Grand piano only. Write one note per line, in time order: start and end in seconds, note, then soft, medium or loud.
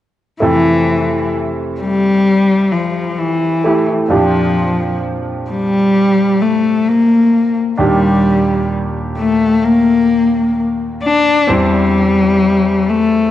0.40 4.07 F2 soft
0.40 4.07 C3 soft
0.40 3.60 A3 soft
0.40 3.60 E4 soft
0.40 3.61 A4 soft
3.64 4.10 A3 soft
3.64 4.11 E4 soft
3.64 4.10 G4 soft
4.08 7.76 F2 soft
4.08 7.75 A#2 soft
4.08 7.76 F3 soft
4.08 7.75 D4 soft
4.08 7.76 G4 soft
7.78 11.44 D#2 soft
7.78 11.44 A#2 soft
7.78 11.44 D#3 soft
7.78 11.44 D4 soft
7.78 11.45 G4 soft
11.47 13.31 E2 soft
11.47 13.31 E3 soft
11.47 13.31 C4 soft
11.47 13.31 E4 soft
11.47 13.31 C5 soft